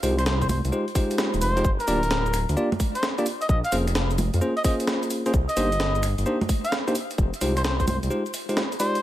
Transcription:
0.03 detuned saw bass C2, tine electric piano G#3 D#4 F4 G4 C5, open hi-hat, cabasa
0.18 muted trumpet C5, finger snap, closed hi-hat, cabasa
0.26 muted trumpet C5, snare, cabasa
0.41 muted trumpet C5, kick, closed hi-hat, cabasa
0.49 muted trumpet C5, open hi-hat, high conga, cabasa
0.65 detuned saw bass C2, closed hi-hat, cabasa
0.72 tine electric piano G#3 D#4 F4 G4 C5, cabasa
0.88 closed hi-hat
0.95 tine electric piano G#3 D#4 F4 G4 C5, kick, open hi-hat, cabasa
1.11 closed hi-hat, cabasa
1.18 snare, cabasa
1.34 detuned saw bass D#1, closed hi-hat, cabasa
1.41 detuned saw bass F1, muted trumpet C5, open hi-hat, cabasa
1.57 tine electric piano G#3 D#4 F4 G4 C5, closed hi-hat, cabasa
1.65 kick, cabasa
1.80 muted trumpet A#4, closed hi-hat, cabasa
1.88 detuned saw bass D1, tine electric piano A#3 D4 F4 G4 D5, open hi-hat, cabasa
2.03 closed hi-hat, cabasa
2.11 snare, cabasa
2.26 closed hi-hat, cabasa
2.34 finger snap, open hi-hat, cabasa
2.49 detuned saw bass D2, closed hi-hat, cabasa
2.57 tine electric piano A#3 D4 F4 G4 D5, cabasa
2.72 closed hi-hat, high conga
2.80 kick, open hi-hat, cabasa
2.95 muted trumpet C5, closed hi-hat, cabasa
3.03 snare, cabasa
3.18 tine electric piano A#3 D4 F4 G4 D5, closed hi-hat, cabasa
3.26 open hi-hat, cabasa
3.42 muted trumpet D#5, closed hi-hat, cabasa
3.49 detuned saw bass A#1, muted trumpet D#5, kick, cabasa
3.64 muted trumpet F5, closed hi-hat, cabasa
3.72 detuned saw bass F1, tine electric piano A#3 C#4 F4 G#4 C5, open hi-hat, cabasa
3.88 finger snap, closed hi-hat, cabasa
3.95 snare, cabasa
4.11 closed hi-hat, cabasa
4.18 open hi-hat, high conga, cabasa
4.34 detuned saw bass F2, closed hi-hat, cabasa
4.41 tine electric piano A#3 C#4 F4 G#4 C5, cabasa
4.57 muted trumpet D#5, closed hi-hat
4.64 tine electric piano A#3 C#4 F4 G#4 C5, muted trumpet D#5, kick, open hi-hat, cabasa
4.80 closed hi-hat, cabasa
4.87 snare, cabasa
5.03 closed hi-hat, cabasa
5.10 open hi-hat, cabasa
5.26 tine electric piano A#3 C#4 F4 G#4 C5, closed hi-hat, cabasa
5.34 detuned saw bass C2, kick, cabasa
5.49 muted trumpet D#5, closed hi-hat, cabasa
5.57 detuned saw bass G1, tine electric piano A#3 D4 D#4 G4 C5, open hi-hat, cabasa
5.72 closed hi-hat, cabasa
5.80 snare, cabasa
5.95 closed hi-hat, cabasa
6.03 finger snap, open hi-hat, cabasa
6.18 detuned saw bass G1, closed hi-hat, cabasa
6.26 tine electric piano A#3 D4 D#4 G4 C5, cabasa
6.41 closed hi-hat, high conga
6.49 kick, open hi-hat, cabasa
6.64 muted trumpet F5, closed hi-hat, cabasa
6.72 snare, cabasa
6.88 tine electric piano A#3 D4 D#4 G4 C5, closed hi-hat, cabasa
6.95 open hi-hat, cabasa
7.11 closed hi-hat, cabasa
7.18 detuned saw bass F1, kick, cabasa
7.34 closed hi-hat, cabasa
7.41 detuned saw bass C2, tine electric piano G#3 D#4 F4 G4 C5, open hi-hat, cabasa
7.57 muted trumpet C5, finger snap, closed hi-hat, cabasa
7.64 muted trumpet C5, snare, cabasa
7.79 muted trumpet C5, kick, closed hi-hat, cabasa
7.87 muted trumpet C5, open hi-hat, high conga, cabasa
8.03 detuned saw bass C2, closed hi-hat, cabasa
8.10 tine electric piano G#3 D#4 F4 G4 C5, cabasa
8.26 closed hi-hat, cabasa
8.34 open hi-hat, cabasa
8.49 tine electric piano G#3 D#4 F4 G4 C5, closed hi-hat, cabasa
8.57 snare, cabasa
8.72 closed hi-hat, cabasa
8.80 tine electric piano G#3 D#4 F4 G4 D5, muted trumpet C5, open hi-hat, cabasa
8.95 closed hi-hat, cabasa

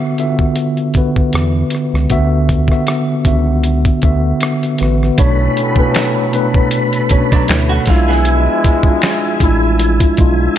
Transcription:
Already playing: tine electric piano D3 B3 F#4 E5
0.18 tine electric piano D3 B3 F4 E5, closed hi-hat
0.26 tine electric piano F#4
0.39 kick
0.56 closed hi-hat
0.77 closed hi-hat
0.94 tine electric piano D3 B3 F#4 B4, kick, closed hi-hat
1.16 kick
1.33 analog synth bass E2, cross-stick, closed hi-hat
1.70 closed hi-hat
1.75 cross-stick
1.94 analog synth bass C#2, cross-stick
2.10 analog synth bass D2, tine electric piano D3 B3 F#4 E5, kick, closed hi-hat
2.49 kick, closed hi-hat
2.68 tine electric piano D3 B3 F#4, kick, cross-stick
2.72 tine electric piano E5
2.87 cross-stick, closed hi-hat
3.25 analog synth bass C#2, tine electric piano B3 D4 F#4 E5, kick, closed hi-hat
3.63 closed hi-hat
3.85 kick, closed hi-hat
4.02 analog synth bass D2, tine electric piano D3 B3 F#4 E5, kick, closed hi-hat
4.40 cross-stick, closed hi-hat
4.63 closed hi-hat
4.78 analog synth bass A1, tine electric piano D3 B3 F#4 B4, closed hi-hat
4.83 cross-stick
5.03 cross-stick
5.18 analog synth bass B1, trombone section A2 F#3 C#4, tine electric piano B2 A3 D4 C#5, tonewheel organ A4 B4 B5, kick, closed hi-hat, shaker
5.39 shaker
5.57 closed hi-hat
5.76 tine electric piano B2 A3 D4 B4, kick, shaker
5.94 finger snap, snare, closed hi-hat, shaker
6.17 shaker
6.33 tine electric piano B2 A3 D4 B4, closed hi-hat
6.54 kick, shaker
6.71 closed hi-hat, shaker
6.93 closed hi-hat, shaker
7.09 tine electric piano B2 A3 C#4 C#5, kick, closed hi-hat, shaker
7.18 tine electric piano D4
7.32 hollow-body jazz guitar F#3 D4, kick, shaker
7.48 analog synth bass D2, hollow-body jazz guitar E4, finger snap, snare, closed hi-hat, shaker
7.69 hollow-body jazz guitar A3 F#4, shaker
7.86 analog synth bass B1, trombone section B2 G#3 E4, hollow-body jazz guitar G#3 F4, tine electric piano G#3 D4, kick, closed hi-hat, shaker
7.90 tonewheel organ F3 E5 G#5, tine electric piano E4, snare
8.08 hollow-body jazz guitar B3 G#4, snare, shaker
8.25 closed hi-hat, shaker
8.47 shaker
8.64 kick, closed hi-hat
8.83 tine electric piano G#3 D4, kick, shaker
8.87 tine electric piano F4
9.02 finger snap, snare, closed hi-hat, shaker
9.03 finger snap
9.24 shaker
9.40 analog synth bass A1, tine electric piano G#3 D4 E4, kick, closed hi-hat
9.63 shaker
9.79 closed hi-hat, shaker
10.00 kick, closed hi-hat, shaker
10.17 analog synth bass B1, tine electric piano G#3 D4 F4, kick, closed hi-hat, shaker
10.39 shaker

